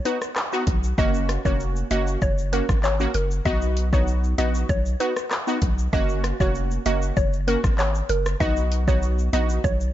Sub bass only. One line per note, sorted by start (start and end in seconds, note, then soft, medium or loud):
0.67 0.93 B1 loud
0.98 1.38 F#1 loud
1.45 1.84 F1 medium
1.91 2.17 F#1 medium
2.22 2.62 F#1 loud
2.69 3.07 G#1 medium
3.15 3.41 F#1 medium
3.46 4.34 B1 loud
4.38 4.64 A#1 medium
4.69 4.95 B1 loud
5.62 5.88 B1 loud
5.93 6.33 F#1 loud
6.40 6.78 F1 loud
6.86 7.12 F#1 medium
7.17 7.57 F#1 loud
7.64 8.02 G#1 medium
8.09 8.35 F#1 medium
8.40 9.29 B1 loud
9.33 9.59 A#1 medium
9.64 9.90 B1 loud